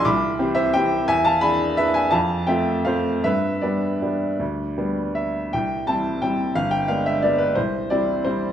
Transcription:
<<
  \new Staff \with { instrumentName = "Upright piano" } { \time 3/4 \key c \major \tempo 4 = 172 <b'' d'''>4. <c'' e''>8 <e'' g''>4 | <e'' gis''>8 <f'' a''>8 <gis'' b''>4 <b' e''>8 <e'' gis''>8 | <f'' a''>4 <e'' g''>4 <c'' f''>4 | <b' e''>4 <b' d''>2~ |
<b' d''>2 e''4 | g''4 a''4 g''4 | f''8 g''8 f''8 e''8 d''8 b'8 | c''4 d''4 c''4 | }
  \new Staff \with { instrumentName = "Upright piano" } { \time 3/4 \key c \major c,4 <e c' g'>4 <e c' g'>4 | e,4 <e d' gis'>4 <e d' gis'>4 | f,4 <a c' f'>4 <a c' f'>4 | g,4 <g b d'>4 <g b d'>4 |
d,4 <g b d'>2 | c,4 <g c' e'>4 <g c' e'>4 | g,,4 <aes b d'>4 <aes b d'>4 | c,4 <g c' e'>4 <g c' e'>4 | }
>>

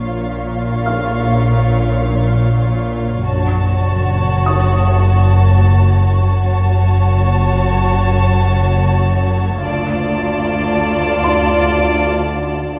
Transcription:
<<
  \new Staff \with { instrumentName = "Felt piano" } { \time 4/4 \key ges \lydian \tempo 4 = 75 r4 <f'' f'''>2. | r4. ees'''2~ ees'''8~ | ees'''8 r2. r8 | r2 c'''2 | }
  \new Staff \with { instrumentName = "Violin section" } { \time 4/4 \key ges \lydian f''1 | a''1 | a''1 | a''1 | }
  \new Staff \with { instrumentName = "Violin section" } { \time 4/4 \key ges \lydian <f' des''>1 | <ges' des''>1 | <ges' des''>1 | <f' d''>1 | }
  \new Staff \with { instrumentName = "Cello section" } { \clef bass \time 4/4 \key ges \lydian bes,1 | ges,1 | ges,1 | d,1 | }
  \new Staff \with { instrumentName = "Double bass section" } { \clef bass \time 4/4 \key ges \lydian bes,,1 | ges,,1 | ges,,1 | d,1 | }
  \new Staff \with { instrumentName = "Synth drone" } { \clef bass \time 4/4 \key ges \lydian bes,,1 | ges,,1 | ges,,1 | d,1 | }
>>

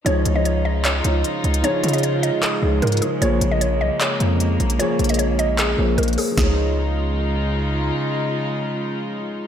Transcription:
<<
  \new Staff \with { instrumentName = "Synth pluck" } { \time 4/4 \key des \major \tempo 4 = 152 des''8. ees''16 des''8 ees''8 des''2 | des''8. ees''16 des''8 ees''8 aes'4 bes'8 aes'8 | des''8. ees''16 des''8 ees''8 des''2 | des''8. ees''16 des''8 ees''8 aes'4 bes'8 aes'8 |
aes'2. r4 | r1 | }
  \new Staff \with { instrumentName = "Grand piano" } { \time 4/4 \key des \major <f ees' aes' des''>8 r16 <f ees' aes' des''>4 r8. <f ees' aes' des''>4 r8 | <f ees' aes' des''>8 r16 <f ees' aes' des''>4 r8. <f ees' aes' des''>8 r8 <f ees' aes' des''>16 r16 | <f bes aes' des''>8 r16 <f bes aes' des''>4 r8. <f bes aes' des''>4 r8 | <f bes aes' des''>8 r16 <f bes aes' des''>4 r8. <f bes aes' des''>8 r8 <f bes aes' des''>16 r16 |
<f ees' des''>1~ | <f ees' des''>1 | }
  \new Staff \with { instrumentName = "String section" } { \time 4/4 \key des \major << { <ees' f'>1~ | <ees' f'>1 | bes1~ | bes1 |
<des aes ees' f'>1~ | <des aes ees' f'>1 | } \\ { <des aes>1~ | <des aes>1~ | <des aes>1~ | <des aes>1 |
r1 | r1 | } >> }
  \new Staff \with { instrumentName = "808-style bass" } { \clef bass \time 4/4 \key des \major des,8 des,2 des,8 r8 des,8 | r8 des4~ des16 r8. des,8 aes,8 r8 | bes,,8 bes,,4 c,16 r8. f,4 bes,,8 | r8 bes,,2 bes,,8 bes,,8 r8 |
des,1 | r1 | }
  \new DrumStaff \with { instrumentName = "Drums" } \drummode { \time 4/4 hh8 hh8 hh4 <hc hh>8 hh8 hh8 hh16 hh16 | hh8 hh32 hh32 hh32 hh32 hh8 hh8 <hc hh>4 hh32 hh32 hh32 hh32 hh8 | hh8 hh8 hh4 <hc hh>8 hh8 hh8 hh16 hh16 | hh8 hh32 hh32 hh32 hh32 hh8 hh8 <hc hh>4 hh32 hh32 hh32 hh32 hho8 |
<bd sn>4 r4 r4 r4 | r4 r4 r4 r4 | }
>>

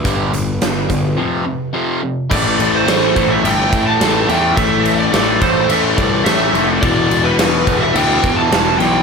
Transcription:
<<
  \new Staff \with { instrumentName = "Lead electric guitar" } { \time 4/4 \key a \minor \tempo 4 = 106 b'2. r4 | d''8. c''4 e''16 g''8. a''8. g''8 | e''8. d''8. c''8 e''8 d''8 e''8. r16 | d''8. b'4 e''16 g''8. a''8. g''8 | }
  \new Staff \with { instrumentName = "Distorted electric guitar" } { \clef bass \time 4/4 \key a \minor <g, d g>8 <g, d>8 <g, d>8 <g, d>8 <f, c f>8 <f, c>8 <f, c f>8 <f, c>8 | <a, e a>4 <a, e a>8 <a, e a>8 <a, e a>4 <a, e a>8 <a, e a>8 | <a, e a>4 <a, e a>8 <a, e a>8 <a, e a>4 <a, e a>8 <a, e a>8 | <e, b, e>4 <e, b, e>8 <e, b, e>8 <e, b, e>4 <e, b, e>8 <e, b, e>8 | }
  \new Staff \with { instrumentName = "Overdriven electric guitar" } { \clef bass \time 4/4 \key a \minor <g, d g>8 <g, d>8 <g, d>8 <g, d>8 <f, c f>8 <f, c>8 <f, c f>8 <f, c>8 | <a, e a>4 <a, e a>8 <a, e a>8 <a, e a>4 <a, e a>8 <a, e a>8 | <a, e a>4 <a, e a>8 <a, e a>8 <a, e a>4 <a, e a>8 <a, e a>8 | <e, b, e>4 <e, b, e>8 <e, b, e>8 <e, b, e>4 <e, b, e>8 <e, b, e>8 | }
  \new Staff \with { instrumentName = "Picked electric bass" } { \clef bass \time 4/4 \key a \minor g,,8 g,,8 g,,8 g,,8 r2 | a,,8 a,,8 a,,8 a,,8 g,,8 a,8 a,,8 e,8 | a,,4 a,,8 a,,8 a,,8 c,8 a,,8 f,,8 | e,,8 e,,8 e,,8 e,,8 d,8 e,8 e,,8 b,,8 | }
  \new DrumStaff \with { instrumentName = "Drums" } \drummode { \time 4/4 <hh bd>8 hh8 <hh sn>8 <hh bd>8 r4 r4 | <cymc bd>8 cymc8 <cymc sn>8 <cymc bd>8 cymc8 <cymc bd>8 <cymc sn>8 cymc8 | <cymc bd>8 cymc8 <cymc sn>8 <cymc bd>8 cymc8 <cymc bd>8 <cymc sn>8 cymc8 | <cymc bd>8 cymc8 <cymc sn>8 <cymc bd>8 cymc8 <cymc bd>8 <cymc sn>8 cymc8 | }
>>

